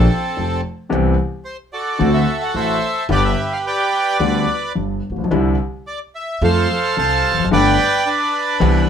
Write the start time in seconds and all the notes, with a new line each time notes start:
Already playing: C4 A4
0.37 F1 F2
0.89 C2 C3 E3 B3 C4 G4
1.45 C5
1.73 F#4 A4 D5
1.99 D2 D3 A3 C4 F#4
2.14 E5
2.42 F#5
2.54 A1 A2 A4 C5 E5
3.09 G1 G2 D3 G3 B3 G4 B4 D5
3.25 E5
3.53 F5
3.67 B4 D5 G5
4.20 D2 D3 G3 B3 G4
4.75 G1 G2
5.10 A1
5.16 A#1
5.24 B1
5.31 C2 C3 D3 G3 C4 E4
5.87 D5
6.15 E5
6.42 F2 F3 A3 C4 A4 C5 F5
6.97 C2 C3 C5 F5 A5
7.31 E1 E2
7.38 F1 F2
7.45 F#1 F#2
7.51 G1 G2 D3 A3 B3 G4 B4 D5 G5
8.06 D4 B4
8.60 C2 C3 E3 B3 C4 G4